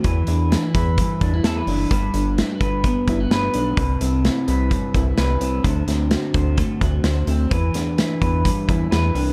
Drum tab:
HH |xxxxxxxo|xxxxxxxx|xxxxxxxx|xxxxxxxx|
SD |--o---o-|--o---o-|--o---o-|-oo---o-|
BD |o--ooo--|o--ooo--|o---oo--|o--ooo--|

HH |xxxxxxxo|
SD |-oo---o-|
BD |o--ooo--|